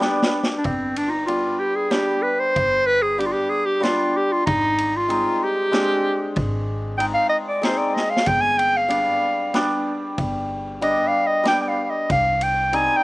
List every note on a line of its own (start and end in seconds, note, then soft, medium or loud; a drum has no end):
0.00 0.70 G3 medium
0.00 0.33 B3 medium
0.00 0.34 D4 medium
0.00 0.32 G4 medium
0.00 snare soft
0.22 snare medium
0.43 snare medium
0.58 0.66 D4 medium
0.64 1.41 G1 medium
0.64 0.99 C4 medium
0.64 kick medium
0.64 ride soft
0.96 1.09 D4 medium
0.96 ride medium
1.08 1.26 D#4 medium
1.08 1.12 F4 medium
1.26 1.89 G3 medium
1.26 1.60 B3 soft
1.26 1.61 D4 soft
1.26 1.61 F4 medium
1.26 ride soft
1.60 1.77 G4 medium
1.76 1.93 G#4 medium
1.90 3.17 G3 medium
1.90 2.24 B3 medium
1.90 2.24 D4 medium
1.90 2.24 G4 medium
1.90 snare medium
1.90 ride soft
2.22 2.41 B4 medium
2.40 2.88 C5 loud
2.56 3.32 G1 medium
2.56 kick medium
2.56 ride soft
2.87 3.04 B4 loud
3.02 3.21 G#4 medium
3.18 3.79 G3 medium
3.18 3.51 B3 medium
3.18 3.51 D4 medium
3.18 3.28 G4 medium
3.18 ride soft
3.26 3.34 F4 medium
3.33 3.51 G4 medium
3.49 3.67 G#4 medium
3.66 3.85 G4 medium
3.80 4.51 G3 medium
3.80 4.14 B3 medium
3.80 4.15 D4 medium
3.80 4.18 F4 medium
3.80 snare medium
3.80 ride soft
4.17 4.34 G4 medium
4.32 4.46 F4 medium
4.46 5.23 G#1 medium
4.46 4.98 D#4 medium
4.46 kick medium
4.46 ride soft
4.78 ride medium
4.96 5.45 F4 medium
5.09 5.70 G#3 medium
5.09 5.41 C4 medium
5.09 5.42 D#4 medium
5.09 ride soft
5.44 6.38 G4 medium
5.71 6.97 G#3 medium
5.71 6.05 C4 medium
5.71 6.05 D4 medium
5.71 snare medium
5.71 ride soft
6.36 7.13 G#1 loud
6.36 kick medium
6.36 ride soft
6.98 7.60 G#3 medium
6.98 7.32 C4 soft
6.98 7.32 D#4 medium
6.98 7.06 G5 medium
6.98 ride soft
7.14 7.29 F5 medium
7.29 7.37 D#5 medium
7.47 7.66 D5 medium
7.62 8.33 G#3 medium
7.62 7.95 C4 medium
7.62 7.96 D#4 medium
7.62 7.79 C5 medium
7.62 snare medium
7.62 ride soft
7.77 7.96 D5 medium
7.94 8.12 D#5 medium
7.94 snare soft
8.11 8.29 F5 medium
8.16 snare medium
8.26 9.04 G1 loud
8.26 8.43 G5 loud
8.26 kick medium
8.26 ride soft
8.41 8.60 G#5 loud
8.58 8.78 G5 medium
8.58 ride soft
8.77 9.72 F5 medium
8.88 9.53 G3 medium
8.88 9.22 B3 medium
8.88 9.23 D4 medium
8.88 ride soft
9.54 10.80 G3 medium
9.54 9.87 B3 medium
9.54 9.87 D4 medium
9.54 snare medium
9.54 ride soft
10.18 10.95 G1 medium
10.18 kick medium
10.18 ride soft
10.81 11.42 G3 medium
10.81 11.14 B3 soft
10.81 11.14 D4 medium
10.81 11.09 D#5 medium
10.81 ride soft
11.08 11.29 F5 medium
11.27 11.47 D#5 medium
11.44 12.15 G3 medium
11.44 11.77 B3 medium
11.44 11.78 D4 medium
11.44 snare medium
11.44 ride soft
11.48 11.62 G5 medium
11.62 11.70 G5 medium
11.69 11.83 F5 medium
11.83 11.92 F5 medium
11.90 12.10 D#5 medium
12.10 12.86 C2 medium
12.10 12.44 F5 medium
12.10 kick medium
12.10 ride soft
12.41 12.77 G5 medium
12.41 ride soft
12.73 13.04 G3 medium
12.73 13.04 C4 medium
12.73 13.04 D#4 medium
12.73 12.99 G#5 medium
12.73 ride soft
12.97 13.04 G5 loud